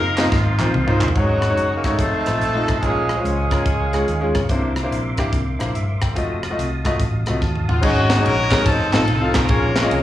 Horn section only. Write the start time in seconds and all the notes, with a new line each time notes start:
Already playing: D#4 A#4
0.33 A#3 C4 F4
1.15 C#4 D#4 F#4
1.99 C4 D#4 A4
2.84 C#4 F4 G#4
3.25 C#4 F4 G#4
7.69 F4
7.84 C#4 D#4 F#4
8.25 C#4 F#4 A#4
8.65 C4 D#4 A4
8.92 C4 D#4 A4
9.34 C#4 F4 A#4